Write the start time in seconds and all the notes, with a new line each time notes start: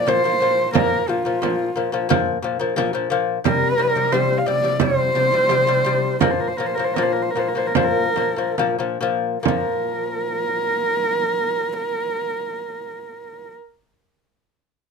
Already playing: D5
0.07 A#2 F3 C5, frame drum
0.24 A#2 F3
0.40 A#2 F3
0.73 A#2 F3 A#4, frame drum
1.08 A#2 F3 F4
1.25 A#2 F3, frame drum
1.42 A#2 F3, frame drum
1.76 A#2 F3, frame drum
1.92 A#2 F3
2.09 A#2 F3, frame drum
2.42 A#2 F3
2.60 A#2 F3, frame drum
2.76 A#2 F3, frame drum
2.93 A#2 F3
3.10 A#2 F3
3.44 C3 G3 A#4, frame drum
3.78 C3 G3
3.95 C3 G3, frame drum
4.12 C3 G3 C5, frame drum
4.38 F5
4.46 C3 G3 D5, frame drum
4.64 C3 G3
4.80 C3 G3 C5, frame drum
5.15 C3 G3
5.32 C3 G3, frame drum
5.49 C3 G3, frame drum
5.67 C3 G3
5.85 C3 G3
6.21 A#2 F3 A#4, frame drum
6.31 C5
6.40 A#4
6.48 C5
6.57 A#2 F3 A#4
6.66 C5
6.75 A#2 A#4, frame drum
6.79 F3
6.84 C5
6.94 A#2 A#4, frame drum
6.98 F3
7.03 C5
7.13 A#4
7.22 C5
7.30 A#4
7.35 A#2 F3, frame drum
7.39 C5
7.48 A#4
7.55 A#2 F3 C5
7.67 A#4
7.75 A#2 F3 C5, frame drum
7.83 A#4
8.16 A#2 F3, frame drum
8.36 A#2 F3, frame drum
8.58 A#2 F3, frame drum
8.79 A#2 F3
9.01 A#2 F3
9.43 A#2 A#4, frame drum
9.48 F3